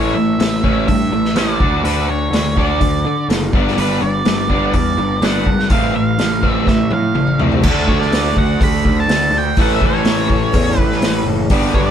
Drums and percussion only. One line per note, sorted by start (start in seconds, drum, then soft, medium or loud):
0.40 snare loud
0.40 open hi-hat soft
0.64 kick medium
0.88 kick medium
0.88 open hi-hat medium
1.25 snare soft
1.36 snare loud
1.36 open hi-hat medium
1.60 kick medium
1.85 open hi-hat medium
2.33 snare loud
2.33 open hi-hat soft
2.57 kick medium
2.81 kick medium
2.81 open hi-hat medium
3.30 snare loud
3.30 open hi-hat soft
3.53 kick loud
3.67 snare soft
3.78 open hi-hat soft
4.25 snare loud
4.25 open hi-hat soft
4.50 kick medium
4.73 kick medium
4.73 open hi-hat soft
5.22 snare loud
5.22 open hi-hat soft
5.46 kick medium
5.59 snare soft
5.70 kick loud
5.70 open hi-hat medium
6.19 snare medium
6.19 open hi-hat soft
6.43 kick medium
6.67 kick medium
6.67 snare medium
6.91 high tom medium
7.15 mid tom medium
7.27 mid tom medium
7.40 floor tom medium
7.52 floor tom medium
7.63 kick loud
7.63 crash loud
7.88 kick medium
8.01 snare soft
8.12 snare loud
8.12 open hi-hat medium
8.37 kick medium
8.61 kick loud
8.61 open hi-hat medium
8.85 kick medium
9.09 snare loud
9.09 open hi-hat medium
9.57 kick loud
9.57 open hi-hat medium
9.82 kick medium
10.05 snare loud
10.05 open hi-hat medium
10.30 kick medium
10.54 kick loud
10.54 open hi-hat medium
10.78 kick medium
10.91 snare soft
11.02 snare loud
11.02 open hi-hat medium
11.50 kick loud
11.50 open hi-hat medium
11.74 kick medium